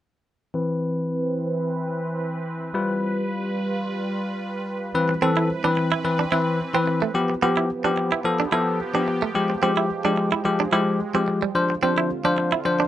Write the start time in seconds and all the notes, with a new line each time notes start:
0.54 E3 C4 B4
2.74 G3 F4 B4
4.95 E3 C4 B4
5.09 muted clean electric guitar stroke
5.22 E3 C4 A4
5.37 E4
5.64 E3 C4 D4 B4
5.77 muted clean electric guitar stroke
5.92 E4
6.04 E3 C4 B4, muted clean electric guitar stroke
6.19 D4
6.32 E3 C4 E4 B4
6.74 E3 C4 B4
6.87 muted clean electric guitar stroke
7.02 A3
7.14 F3 B3 G4
7.30 muted clean electric guitar stroke
7.42 F3 B3 G4
7.57 E4
7.84 F3 B3 D4 G4
7.98 muted clean electric guitar stroke
8.12 E4
8.25 F3 B3 A4, muted clean electric guitar stroke
8.40 D4
8.52 F3 B3 E4 A4
8.94 F3 B3 D4 G4
9.08 muted clean electric guitar stroke
9.22 A3
9.35 F3 G#3 G4
9.50 muted clean electric guitar stroke
9.62 F3 G#3 C4 G4
9.77 E4
10.04 F3 G#3 D4 G4
10.18 muted clean electric guitar stroke
10.32 E4
10.45 F3 G#3 G4, muted clean electric guitar stroke
10.60 D4
10.72 F3 G#3 E4 G4
11.14 F3 G#3 C4 G4
11.28 muted clean electric guitar stroke
11.42 G3
11.55 D3 F3 C4 D4 F4 C5
11.70 muted clean electric guitar stroke
11.82 F3 C4 D4 C5
11.98 E4
12.25 F3 D4 C5
12.38 muted clean electric guitar stroke
12.52 E4
12.65 F3 D4 C5, muted clean electric guitar stroke
12.80 D4